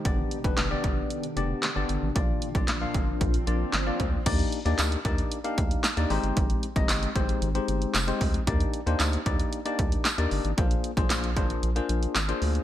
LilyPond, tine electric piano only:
\new Staff \with { instrumentName = "Tine electric piano" } { \time 4/4 \key ees \major \tempo 4 = 114 <b d' g' d''>8 r16 <b d' g' b'>8 <b d' g' d''>4 r16 <b d' g' d''>8 r16 <b d' g' d''>8 r16 | <bes d' f' d''>8 r16 <bes d' f' d''>8 <bes d' f' f''>4 r16 <bes d' f' d''>8 r16 <bes d' f' d''>8 r16 | <bes d' ees' g' d''>8 r16 <bes d' ees' g' d''>8 r16 <bes d' ees' g' d''>8 r16 <bes d' ees' g' f''>8. r16 <bes d' ees' g' d''>16 <aes c' ees' g' c''>8~ | <aes c' ees' g' c''>8 r16 <aes c' ees' g' ees''>8 r16 <aes c' ees' g' c''>8 r16 <aes c' ees' g' c''>8. r16 <aes c' ees' g' c''>8 r16 |
<bes d' ees' g' d''>8 r16 <bes d' ees' g' c''>8 r16 <bes d' ees' g' d''>8 r16 <bes d' ees' g' d''>8. r16 <bes d' ees' g' d''>8 r16 | <bes d' f' aes' c''>8 r16 <bes d' f' aes' c''>8 r16 <bes d' f' aes' c''>8 r16 <bes d' f' aes' c''>8. r16 <bes d' f' aes' c''>8 r16 | }